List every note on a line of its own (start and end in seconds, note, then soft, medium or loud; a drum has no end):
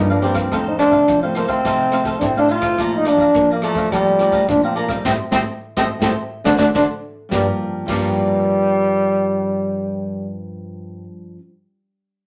0.00 0.43 G2 loud
0.00 0.49 D3 medium
0.00 0.18 F3 medium
0.00 0.18 A#3 medium
0.00 0.19 D4 medium
0.10 0.21 D4 medium
0.10 0.21 A#4 soft
0.10 0.22 D5 soft
0.10 0.22 F5 soft
0.10 closed hi-hat soft
0.22 0.47 F3 medium
0.22 0.47 A#3 soft
0.22 0.70 C4 medium
0.22 0.47 D4 medium
0.22 0.36 G4 medium
0.22 0.35 A#4 medium
0.22 0.34 D5 medium
0.22 0.33 F5 medium
0.22 closed hi-hat soft
0.35 0.50 A#4 soft
0.35 0.50 D5 soft
0.35 0.49 F5 soft
0.35 kick medium
0.35 cross-stick medium
0.52 0.88 F2 medium
0.52 1.06 F2 soft
0.52 0.68 D#3 soft
0.52 0.69 A3 medium
0.52 0.69 C4 medium
0.52 0.78 D#4 medium
0.52 0.79 A4 medium
0.52 0.79 C5 medium
0.52 0.79 F5 medium
0.52 kick medium
0.52 cross-stick medium
0.52 closed hi-hat medium
0.68 0.78 D#4 medium
0.79 1.17 D#3 soft
0.79 1.18 A3 soft
0.79 1.18 C4 medium
0.79 1.25 D4 loud
0.79 0.89 D#4 medium
0.79 0.89 A4 medium
0.79 0.89 C5 medium
0.79 0.89 F5 medium
0.79 cross-stick medium
0.79 closed hi-hat soft
0.89 1.03 C3 medium
0.89 1.21 C5 soft
0.89 1.20 F5 soft
0.89 kick medium
0.89 closed hi-hat soft
0.93 1.21 A4 soft
1.08 1.62 C3 medium
1.08 1.44 F3 medium
1.08 kick medium
1.08 cross-stick medium
1.08 closed hi-hat medium
1.23 1.47 D#3 medium
1.23 1.47 A3 medium
1.23 1.38 C4 medium
1.23 1.48 C4 medium
1.23 1.35 A4 soft
1.23 1.35 C5 soft
1.23 1.36 F5 soft
1.23 closed hi-hat soft
1.35 1.49 A#3 medium
1.35 1.49 D#4 medium
1.35 1.48 A4 medium
1.35 1.48 C5 medium
1.35 1.47 F5 medium
1.35 cross-stick medium
1.35 closed hi-hat soft
1.46 1.60 C3 medium
1.46 1.60 D#3 medium
1.46 1.60 A3 medium
1.46 2.13 C4 loud
1.46 1.60 C4 medium
1.46 1.63 A4 soft
1.46 1.63 C5 soft
1.46 1.63 F5 soft
1.46 kick medium
1.46 closed hi-hat soft
1.65 2.19 F2 medium
1.65 2.13 C3 medium
1.65 1.89 D#3 soft
1.65 1.89 A3 medium
1.65 1.89 C4 medium
1.65 1.91 D#4 medium
1.65 1.91 A4 medium
1.65 1.92 C5 medium
1.65 1.92 F5 medium
1.65 kick medium
1.65 cross-stick medium
1.65 closed hi-hat medium
1.80 closed hi-hat soft
1.92 2.19 D#3 medium
1.92 2.20 A3 soft
1.92 2.20 C4 medium
1.92 2.04 D#4 soft
1.92 2.04 A4 soft
1.92 2.04 C5 medium
1.92 2.05 F5 medium
1.92 cross-stick medium
1.92 closed hi-hat soft
2.05 2.16 D#4 medium
2.05 2.16 A4 medium
2.05 2.16 C5 medium
2.05 2.16 F5 medium
2.05 kick medium
2.19 2.70 A2 loud
2.19 2.75 C3 medium
2.19 2.36 C4 loud
2.19 2.24 D4 medium
2.19 kick medium
2.19 cross-stick medium
2.19 closed hi-hat medium
2.36 2.76 D#3 medium
2.36 2.76 A3 medium
2.36 2.76 C4 medium
2.36 2.50 D4 medium
2.36 2.49 A4 soft
2.36 2.49 C5 soft
2.36 2.50 F5 soft
2.36 closed hi-hat soft
2.48 2.63 D#4 medium
2.48 2.98 F4 loud
2.48 2.63 A4 medium
2.48 2.63 C5 medium
2.48 2.62 F5 medium
2.48 closed hi-hat soft
2.62 2.77 A4 soft
2.62 2.77 C5 soft
2.62 2.77 F5 soft
2.62 kick medium
2.62 cross-stick medium
2.78 3.32 A#2 medium
2.78 3.14 A#2 medium
2.78 3.15 F3 medium
2.78 3.15 A3 medium
2.78 3.15 D4 medium
2.78 3.06 A4 medium
2.78 3.06 D5 medium
2.78 3.06 F5 medium
2.78 3.07 A#5 medium
2.78 kick medium
2.78 cross-stick medium
2.78 closed hi-hat medium
2.93 3.09 D#4 medium
2.93 closed hi-hat soft
3.05 3.50 D4 loud
3.05 3.16 A4 medium
3.05 3.16 D5 medium
3.05 3.16 F5 medium
3.05 3.16 A#5 medium
3.05 cross-stick medium
3.05 closed hi-hat soft
3.16 3.30 F3 medium
3.16 3.48 A#5 soft
3.16 kick medium
3.16 closed hi-hat soft
3.21 3.48 D5 soft
3.21 3.48 F5 soft
3.34 3.89 F2 medium
3.34 3.73 F3 soft
3.34 3.71 A#3 loud
3.34 3.74 D4 medium
3.34 kick medium
3.34 cross-stick medium
3.34 closed hi-hat medium
3.51 3.62 A#3 medium
3.51 3.63 D5 soft
3.51 3.63 F5 soft
3.51 3.63 A#5 soft
3.62 3.90 A3 loud
3.62 3.76 A4 medium
3.62 3.77 D5 medium
3.62 3.76 F5 medium
3.62 3.75 A#5 medium
3.62 cross-stick medium
3.62 closed hi-hat soft
3.73 3.87 F3 medium
3.73 4.15 F3 medium
3.73 4.15 A3 medium
3.73 4.15 D4 medium
3.73 3.90 A#5 soft
3.73 kick medium
3.73 closed hi-hat soft
3.77 3.91 D5 soft
3.77 3.90 F5 soft
3.92 4.46 A#2 medium
3.92 4.40 F3 medium
3.92 4.45 G3 medium
3.92 4.18 A4 medium
3.92 4.19 D5 medium
3.92 4.20 F5 medium
3.92 4.20 A#5 medium
3.92 kick medium
3.92 cross-stick medium
3.92 closed hi-hat medium
4.07 closed hi-hat soft
4.19 4.29 F3 medium
4.19 4.30 A3 medium
4.19 4.30 D4 medium
4.19 4.31 A4 soft
4.19 4.31 D5 soft
4.19 4.31 F5 soft
4.19 4.32 A#5 medium
4.19 cross-stick medium
4.19 closed hi-hat soft
4.32 4.43 F3 medium
4.32 4.43 A3 medium
4.32 4.43 D4 medium
4.32 4.42 A4 medium
4.32 4.42 D5 medium
4.32 4.42 F5 medium
4.32 4.43 A#5 medium
4.32 kick medium
4.32 closed hi-hat soft
4.48 5.03 F2 medium
4.48 4.97 A#2 loud
4.48 4.87 F3 soft
4.48 4.87 A3 medium
4.48 4.62 D4 medium
4.48 4.87 D4 medium
4.48 kick medium
4.48 cross-stick medium
4.48 closed hi-hat medium
4.63 4.76 C4 medium
4.63 4.74 D5 soft
4.63 4.75 F5 soft
4.63 4.76 A#5 soft
4.63 closed hi-hat soft
4.75 4.90 A#3 medium
4.75 4.89 A4 medium
4.75 4.89 D5 medium
4.75 4.88 F5 medium
4.75 4.87 A#5 medium
4.75 closed hi-hat medium
4.88 5.04 G3 medium
4.88 5.04 C4 medium
4.88 5.04 D#4 medium
4.88 5.03 D5 soft
4.88 5.03 F5 soft
4.88 5.03 A#5 soft
4.88 kick medium
4.88 cross-stick medium
5.05 5.16 A2 loud
5.05 5.15 G3 medium
5.05 5.15 A3 medium
5.05 5.12 C4 medium
5.05 5.15 C4 medium
5.05 5.15 A4 medium
5.05 5.15 C5 medium
5.05 5.14 D#5 medium
5.05 kick medium
5.05 snare medium
5.31 5.43 A2 loud
5.31 5.42 G3 medium
5.31 5.42 A3 medium
5.31 5.39 C4 loud
5.31 5.42 C4 medium
5.31 5.42 A4 medium
5.31 5.42 C5 medium
5.31 5.42 D#5 medium
5.31 kick medium
5.31 snare medium
5.77 5.87 A2 medium
5.77 5.86 G3 medium
5.77 5.86 A3 medium
5.77 5.84 C4 medium
5.77 5.86 C4 medium
5.77 5.86 A4 medium
5.77 5.86 C5 medium
5.77 5.86 D#5 medium
5.77 kick medium
5.77 snare medium
5.99 6.12 A2 medium
5.99 6.12 G3 medium
5.99 6.12 A3 medium
5.99 6.09 C4 medium
5.99 6.12 C4 medium
5.99 6.12 A4 medium
5.99 6.12 C5 medium
5.99 6.12 D#5 medium
5.99 kick medium
5.99 snare medium
6.44 6.55 D3 medium
6.44 6.55 A3 medium
6.44 6.55 C4 medium
6.44 6.55 D4 medium
6.44 6.53 D4 medium
6.44 6.55 C5 medium
6.44 6.55 D5 loud
6.44 6.55 F#5 medium
6.44 kick medium
6.44 snare medium
6.56 6.69 D3 medium
6.56 6.68 A3 medium
6.56 6.68 C4 medium
6.56 6.68 D4 medium
6.56 6.66 D4 medium
6.56 6.69 C5 medium
6.56 6.69 D5 medium
6.56 6.69 F#5 medium
6.56 kick medium
6.56 snare medium
6.75 6.85 D3 medium
6.75 6.84 A3 medium
6.75 6.84 C4 medium
6.75 6.84 D4 medium
6.75 6.82 D4 medium
6.75 6.84 C5 medium
6.75 6.84 D5 medium
6.75 6.84 F#5 medium
6.75 kick medium
6.75 snare medium
7.29 7.85 G2 medium
7.29 7.47 G2 medium
7.29 7.88 F3 medium
7.29 7.47 G3 medium
7.29 7.90 A#3 medium
7.29 7.87 G4 medium
7.29 kick medium
7.29 snare medium
7.33 7.92 D4 medium
7.33 7.89 A#4 medium
7.33 7.89 D5 medium
7.33 7.90 F5 medium
7.86 11.36 G2 medium
7.86 11.04 G2 medium
7.86 11.38 F3 medium
7.86 10.33 G3 loud
7.86 11.38 G4 medium
7.86 11.39 A#4 medium
7.86 11.40 D5 medium
7.86 kick medium
7.86 crash medium
7.90 11.40 A#3 medium
7.90 11.42 D4 medium
7.90 11.40 F5 medium